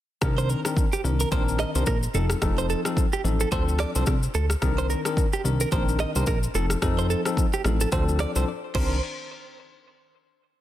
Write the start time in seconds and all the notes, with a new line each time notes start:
0.21 C2 D#3 C4 D4 A#4, kick, cross-stick, shaker
0.38 C5, shaker
0.50 A#4, shaker
0.65 D#3 C4 D4 A#4, cross-stick, shaker
0.77 kick, shaker
0.93 G4, shaker
1.04 C2 D#3 C4 D4 A#4, shaker
1.20 A#4, shaker
1.31 A#1 D#3 C4 D4 A#4 C5, kick, shaker
1.48 shaker
1.59 D#5, cross-stick, shaker
1.75 C2 D#3 C4 D4 A#4 C5, shaker
1.86 A#1 A#4, kick, cross-stick, shaker
2.03 shaker
2.14 F1 F3 C4 D#4 A4, shaker
2.30 cross-stick, shaker
2.42 F1 F3 C4 D#4 A4, kick, cross-stick, shaker
2.58 C5, shaker
2.70 A4, shaker
2.85 F3 C4 D#4 A4, cross-stick, shaker
2.97 kick, shaker
3.13 G4, shaker
3.24 A1 F3 C4 D#4 A4, shaker
3.40 A4, shaker
3.52 D2 F3 C4 D4 A4 C5, kick, shaker
3.68 shaker
3.79 D5, cross-stick, shaker
3.95 C2 F3 C4 D4 A4 C5, shaker
4.06 C2, kick, cross-stick, shaker
4.23 shaker
4.34 D2 A4, shaker
4.50 cross-stick, shaker
4.62 C2 D#3 C4 D4 A#4, kick, cross-stick, shaker
4.78 C5, shaker
4.90 A#4, shaker
5.05 D#3 C4 D4 A#4, cross-stick, shaker
5.17 kick, shaker
5.33 G4, shaker
5.44 C2 D#3 C4 D4 A#4, shaker
5.60 A#4, shaker
5.72 A#1 D#3 C4 D4 A#4 C5, kick, shaker
5.89 shaker
5.99 D#5, cross-stick, shaker
6.15 C2 D#3 C4 D4 A#4 C5, shaker
6.27 A#1 A#4, kick, cross-stick, shaker
6.43 shaker
6.54 F1 F3 C4 D#4 A4, shaker
6.70 cross-stick, shaker
6.82 F1 F3 C4 D#4 A4, kick, cross-stick, shaker
6.98 C5, shaker
7.10 A4, shaker
7.25 F3 C4 D#4 A4, cross-stick, shaker
7.37 kick, shaker
7.53 G4, shaker
7.64 A1 F3 C4 D#4 A4, cross-stick, shaker
7.81 A4, shaker
7.92 D2 F3 C4 D4 A4 C5, kick, shaker
8.09 shaker
8.19 D5, cross-stick, shaker
8.35 C2 F3 C4 D4 A4 C5, shaker
8.74 C2 D#3 C4 D4 A#4 C5, kick, crash